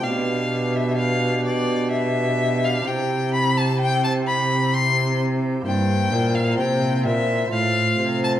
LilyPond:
<<
  \new Staff \with { instrumentName = "Violin" } { \time 3/4 \key c \major \tempo 4 = 64 f''8. e''16 f''8 d''8 e''8. f''16 | g''8 b''16 a''16 g''16 a''16 b''8 c'''8 r8 | \key c \mixolydian g''8. f''16 g''8 e''8 f''8. a''16 | }
  \new Staff \with { instrumentName = "Pipe organ" } { \time 3/4 \key c \major <d' g'>2. | <e' g'>2. | \key c \mixolydian <bes e' c''>2 <a f' c''>4 | }
  \new Staff \with { instrumentName = "Pipe organ" } { \clef bass \time 3/4 \key c \major b,2. | c2. | \key c \mixolydian g,8 bes,8 c8 bes,8 a,8 c8 | }
  \new Staff \with { instrumentName = "Cello" } { \clef bass \time 3/4 \key c \major b,2. | c2. | \key c \mixolydian g,8 bes,8 c8 bes,8 a,8 c8 | }
>>